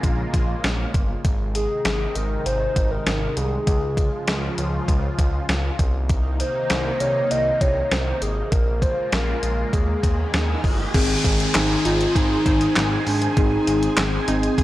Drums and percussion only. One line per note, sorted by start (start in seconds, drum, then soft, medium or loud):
0.03 kick medium
0.03 closed hi-hat medium
0.34 kick medium
0.34 closed hi-hat medium
0.64 snare loud
0.64 closed hi-hat medium
0.94 kick loud
0.94 closed hi-hat medium
1.25 kick loud
1.25 closed hi-hat medium
1.55 closed hi-hat medium
1.85 snare loud
1.85 closed hi-hat medium
2.15 closed hi-hat medium
2.46 closed hi-hat medium
2.76 kick medium
2.76 closed hi-hat medium
3.06 snare loud
3.06 closed hi-hat medium
3.37 closed hi-hat medium
3.67 kick loud
3.67 closed hi-hat medium
3.97 kick medium
3.97 closed hi-hat medium
4.27 snare loud
4.27 closed hi-hat medium
4.58 closed hi-hat medium
4.88 kick medium
4.88 closed hi-hat medium
5.19 kick medium
5.19 closed hi-hat medium
5.49 snare loud
5.49 closed hi-hat medium
5.79 kick loud
5.79 closed hi-hat medium
6.09 kick loud
6.09 closed hi-hat medium
6.40 closed hi-hat medium
6.70 snare loud
6.70 closed hi-hat medium
7.00 closed hi-hat medium
7.31 closed hi-hat medium
7.61 kick medium
7.61 closed hi-hat medium
7.91 snare loud
7.91 closed hi-hat medium
8.22 closed hi-hat medium
8.52 kick loud
8.52 closed hi-hat medium
8.82 kick medium
8.82 closed hi-hat medium
9.12 snare loud
9.12 closed hi-hat medium
9.43 closed hi-hat medium
9.73 kick medium
9.73 closed hi-hat medium
10.03 kick medium
10.03 closed hi-hat medium
10.34 snare loud
10.34 closed hi-hat medium
10.64 kick loud
10.64 open hi-hat medium
10.94 kick loud
10.94 closed hi-hat medium
10.94 crash loud
11.24 kick medium
11.24 closed hi-hat medium
11.40 closed hi-hat medium
11.55 snare loud
11.55 clap loud
11.55 closed hi-hat medium
11.85 closed hi-hat medium
12.01 closed hi-hat soft
12.16 kick loud
12.16 closed hi-hat medium
12.46 kick medium
12.46 closed hi-hat medium
12.61 closed hi-hat medium
12.76 snare loud
12.76 clap medium
12.76 closed hi-hat medium
13.07 open hi-hat medium
13.22 closed hi-hat medium
13.37 kick loud
13.37 closed hi-hat medium
13.67 closed hi-hat medium
13.83 closed hi-hat medium
13.97 snare loud
13.97 clap loud
13.97 closed hi-hat medium
14.28 closed hi-hat medium
14.43 closed hi-hat soft
14.58 kick loud
14.58 closed hi-hat medium